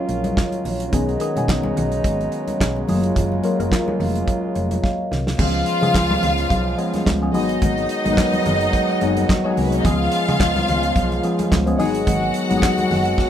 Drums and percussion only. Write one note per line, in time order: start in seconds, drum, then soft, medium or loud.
0.09 closed hi-hat soft
0.24 closed hi-hat soft
0.24 high conga medium
0.37 kick loud
0.37 snare medium
0.37 clap medium
0.52 closed hi-hat soft
0.52 muted conga soft
0.64 open hi-hat medium
0.64 low conga medium
0.80 closed hi-hat medium
0.92 kick loud
0.92 closed hi-hat medium
0.92 low conga medium
1.09 closed hi-hat soft
1.20 closed hi-hat medium
1.36 closed hi-hat soft
1.36 high conga medium
1.48 kick loud
1.48 snare loud
1.48 clap medium
1.63 muted conga soft
1.63 high conga loud
1.76 closed hi-hat medium
1.76 low conga medium
1.92 closed hi-hat soft
2.04 kick loud
2.04 closed hi-hat medium
2.04 muted conga soft
2.21 closed hi-hat soft
2.32 closed hi-hat soft
2.48 closed hi-hat soft
2.48 high conga medium
2.61 kick loud
2.61 snare loud
2.61 clap medium
2.77 muted conga soft
2.88 open hi-hat medium
2.88 low conga medium
3.04 closed hi-hat medium
3.15 kick loud
3.15 closed hi-hat medium
3.15 low conga medium
3.32 muted conga soft
3.44 closed hi-hat medium
3.60 closed hi-hat soft
3.60 high conga medium
3.72 kick loud
3.72 snare loud
3.72 clap medium
3.88 muted conga soft
3.88 high conga medium
4.00 open hi-hat medium
4.00 low conga medium
4.15 closed hi-hat soft
4.28 kick loud
4.28 closed hi-hat medium
4.55 closed hi-hat soft
4.71 closed hi-hat soft
4.71 high conga medium
4.84 kick loud
4.84 snare medium
5.11 snare medium
5.11 low conga medium
5.27 snare medium
5.39 kick loud
5.39 crash loud
5.39 muted conga soft
5.39 low conga medium
5.55 muted conga soft
5.66 closed hi-hat medium
5.83 closed hi-hat soft
5.83 high conga medium
5.95 kick loud
5.95 snare loud
5.95 clap loud
6.11 muted conga soft
6.11 high conga loud
6.23 closed hi-hat medium
6.23 low conga medium
6.38 closed hi-hat soft
6.50 kick loud
6.50 closed hi-hat medium
6.50 muted conga soft
6.79 closed hi-hat soft
6.94 snare soft
6.94 closed hi-hat medium
6.94 high conga medium
7.06 kick loud
7.06 snare loud
7.06 clap medium
7.06 high conga medium
7.23 muted conga soft
7.34 open hi-hat medium
7.34 low conga medium
7.49 closed hi-hat medium
7.62 kick loud
7.62 closed hi-hat medium
7.62 muted conga soft
7.62 low conga medium
7.78 closed hi-hat soft
7.89 closed hi-hat medium
8.06 closed hi-hat medium
8.06 high conga medium
8.17 kick loud
8.17 snare loud
8.17 clap loud
8.17 muted conga soft
8.33 closed hi-hat soft
8.33 high conga medium
8.46 closed hi-hat medium
8.46 low conga medium
8.61 closed hi-hat soft
8.73 kick loud
8.73 closed hi-hat medium
8.73 muted conga soft
8.90 muted conga soft
9.01 closed hi-hat soft
9.17 closed hi-hat medium
9.17 high conga medium
9.29 kick loud
9.29 snare loud
9.29 clap medium
9.29 muted conga soft
9.29 high conga medium
9.57 open hi-hat medium
9.57 low conga medium
9.72 closed hi-hat medium
9.85 kick loud
9.85 closed hi-hat medium
9.85 muted conga soft
9.85 low conga medium
10.12 closed hi-hat medium
10.28 closed hi-hat soft
10.28 high conga medium
10.40 kick loud
10.40 snare loud
10.40 clap medium
10.40 muted conga soft
10.56 closed hi-hat soft
10.56 muted conga soft
10.56 high conga medium
10.68 closed hi-hat medium
10.68 low conga medium
10.83 closed hi-hat soft
10.96 kick loud
10.96 closed hi-hat medium
10.96 muted conga soft
11.12 closed hi-hat soft
11.12 muted conga soft
11.23 closed hi-hat soft
11.39 closed hi-hat medium
11.39 high conga medium
11.52 kick loud
11.52 snare loud
11.52 clap medium
11.52 muted conga soft
11.52 high conga medium
11.67 closed hi-hat soft
11.79 open hi-hat medium
11.79 low conga medium
11.95 closed hi-hat medium
12.07 kick loud
12.07 closed hi-hat loud
12.07 low conga medium
12.34 closed hi-hat medium
12.51 closed hi-hat soft
12.51 high conga medium
12.62 kick loud
12.62 snare loud
12.62 clap loud
12.62 muted conga soft
12.78 closed hi-hat soft
12.78 high conga loud
12.91 open hi-hat medium
12.91 low conga medium
13.05 closed hi-hat soft
13.18 kick loud
13.18 snare medium
13.18 muted conga soft